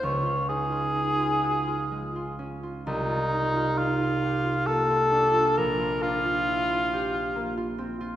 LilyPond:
<<
  \new Staff \with { instrumentName = "Cor anglais" } { \time 3/4 \key des \major \tempo 4 = 66 des''8 aes'2 r8 | ees'4 f'4 a'4 | bes'8 f'2 r8 | }
  \new Staff \with { instrumentName = "Harp" } { \time 3/4 \key des \major <des, f aes des' f'>16 f'16 ees'16 f'16 ees'16 f'16 ges'16 f'16 aes16 f'16 des'16 f'16 | c,16 f'16 ees'16 f'16 ees'16 f'16 g'16 f'16 bes16 f'16 d'16 f'16 | bes,,16 f'16 d'16 f'16 fes'16 f'16 g'16 f'16 bes16 f'16 c'16 f'16 | }
>>